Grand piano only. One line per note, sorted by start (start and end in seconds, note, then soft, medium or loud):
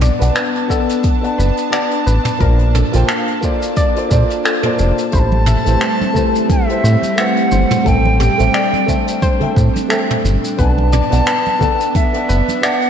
0.00 0.15 B3 medium
0.00 0.16 B4 medium
0.00 0.16 D5 medium
0.00 0.17 F#5 medium
0.00 0.17 A5 medium
0.19 0.33 B3 medium
0.19 0.33 B4 medium
0.19 0.33 D5 medium
0.19 0.34 F#5 medium
0.19 0.34 A5 medium
0.68 1.18 B3 medium
0.68 1.18 B4 medium
0.68 1.19 D5 medium
0.68 1.19 F#5 medium
0.68 1.20 A5 medium
1.21 1.68 B3 medium
1.21 1.68 B4 medium
1.21 1.69 D5 medium
1.21 1.69 F#5 medium
1.21 1.70 A5 medium
1.71 2.36 B3 medium
1.71 2.36 B4 medium
1.71 2.37 D5 medium
1.71 2.37 F#5 medium
1.71 2.38 A5 medium
2.39 2.88 A#3 medium
2.39 2.89 F4 medium
2.39 2.90 C5 medium
2.39 2.90 D5 medium
2.39 2.89 A5 medium
2.92 3.05 A#3 medium
2.92 3.06 F4 medium
2.92 3.06 A4 medium
2.92 3.07 C5 medium
2.92 3.07 G5 loud
3.41 3.91 A#3 medium
3.41 3.91 F4 medium
3.41 3.92 A4 medium
3.41 3.92 C5 medium
3.41 3.93 D5 loud
3.95 4.07 A#3 medium
3.95 4.08 F4 medium
3.95 4.08 A4 medium
3.95 4.09 C5 medium
3.95 4.09 D5 medium
4.09 4.59 A#3 medium
4.09 4.59 F4 medium
4.09 4.60 A4 medium
4.09 4.60 C5 medium
4.09 4.61 D5 loud
4.63 4.75 A#3 medium
4.63 4.75 F4 medium
4.63 4.76 A4 medium
4.63 4.76 C5 medium
4.63 4.76 D5 loud
4.77 5.09 A#3 medium
4.77 5.09 F4 medium
4.77 5.10 A4 medium
4.77 5.10 C5 medium
4.77 5.11 D5 medium
5.12 5.61 A3 medium
5.12 5.62 E4 medium
5.12 5.62 G4 medium
5.12 5.63 C5 medium
5.12 5.63 B5 medium
5.65 5.78 A3 medium
5.65 5.79 E4 medium
5.65 5.79 G4 medium
5.65 5.80 B4 medium
5.65 5.80 C5 medium
6.13 6.63 A3 medium
6.13 6.64 E4 medium
6.13 6.64 G4 medium
6.13 6.65 B4 medium
6.13 6.65 C5 medium
6.67 7.13 A3 medium
6.67 7.14 E4 medium
6.67 7.14 G4 medium
6.67 7.15 B4 medium
6.67 7.15 C5 medium
7.16 7.82 A3 medium
7.16 7.82 E4 medium
7.16 7.82 G4 medium
7.16 7.83 B4 medium
7.16 7.83 C5 medium
7.84 8.34 A3 medium
7.84 8.34 A4 medium
7.84 8.35 C5 medium
7.84 8.35 E5 medium
7.84 8.36 G5 medium
8.38 8.51 A3 medium
8.38 8.51 A4 medium
8.38 8.52 C5 medium
8.38 8.52 E5 medium
8.38 8.53 G5 loud
8.86 9.36 A3 medium
8.86 9.36 A4 medium
8.86 9.37 C5 medium
8.86 9.37 E5 medium
8.86 9.38 G5 loud
9.40 9.86 A3 medium
9.40 9.86 A4 medium
9.40 9.87 C5 medium
9.40 9.87 E5 medium
9.40 9.88 G5 medium
9.89 10.54 A3 medium
9.89 10.55 A4 medium
9.89 10.55 C5 medium
9.89 10.56 E5 medium
9.89 10.56 G5 medium
10.57 11.07 B3 medium
10.57 11.07 B4 medium
10.57 11.07 D5 medium
10.57 11.08 F#5 medium
10.57 11.08 A5 medium
11.10 11.23 B3 medium
11.10 11.24 B4 medium
11.10 11.24 D5 medium
11.10 11.25 F#5 medium
11.10 11.25 A5 loud
11.59 12.09 B3 medium
11.59 12.09 B4 medium
11.59 12.10 D5 medium
11.59 12.10 F#5 medium
11.59 12.11 A5 loud
12.13 12.59 B3 medium
12.13 12.59 B4 medium
12.13 12.60 D5 medium
12.13 12.60 F#5 medium
12.13 12.61 A5 medium
12.61 12.90 B3 medium
12.61 12.90 B4 medium
12.61 12.90 D5 medium
12.61 12.90 F#5 medium
12.61 12.90 A5 medium